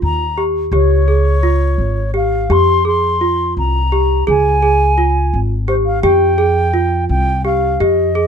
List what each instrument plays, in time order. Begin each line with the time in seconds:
Already playing: celesta F4
0.02 upright bass D#2, flute A#5
0.38 celesta G4
0.71 upright bass C#2, celesta G4, flute C#5
1.08 celesta G#4
1.43 celesta F4
1.78 upright bass G#1
2.14 celesta G4, flute F5
2.50 upright bass F2, celesta G4, flute C6
2.85 celesta G#4, flute C6
3.21 celesta F4
3.57 upright bass C2, flute A#5
3.92 celesta G4
4.27 upright bass C#2, celesta G#4, flute G#5
4.62 celesta G#4
4.98 celesta F4
5.33 upright bass G#1
5.68 celesta G4, flute C5
5.86 flute F5
6.03 upright bass F2, celesta G4, flute G5
6.38 celesta G#4
6.74 celesta F4
7.09 upright bass C2, flute G5
7.45 celesta G4, flute F5
7.80 upright bass F2, celesta G4, flute D#5
8.15 celesta G#4